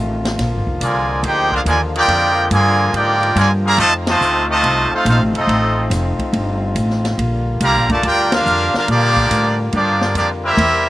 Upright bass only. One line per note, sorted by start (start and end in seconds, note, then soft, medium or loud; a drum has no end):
0.00 0.37 A1 loud
0.38 0.52 A#1 medium
0.52 0.66 G#1 medium
0.67 0.80 F1 medium
0.80 1.22 C2 medium
1.23 1.64 D2 medium
1.65 2.07 D#2 medium
2.08 2.49 F2 loud
2.50 2.92 G2 medium
2.93 3.34 G#2 medium
3.35 3.77 G2 loud
3.78 4.19 F2 loud
4.21 4.62 D2 loud
4.63 4.90 C2 medium
4.92 muted upright bass stroke soft
5.05 5.19 A#1 loud
5.19 5.32 A1 medium
5.33 5.47 F1 medium
5.47 5.89 A1 loud
5.90 6.17 F1 loud
6.19 muted upright bass stroke soft
6.32 6.74 G1 medium
6.75 7.16 A1 loud
7.18 7.59 A#1 medium
7.60 7.75 C2 loud
7.75 7.89 A#1 medium
7.89 8.02 G1 medium
8.03 8.44 D2 medium
8.46 8.72 F2 loud
8.75 muted upright bass stroke soft
8.88 9.29 A#2 medium
9.30 9.72 A2 medium
9.73 10.14 G2 medium
10.15 10.56 F2 loud
10.57 10.89 E2 loud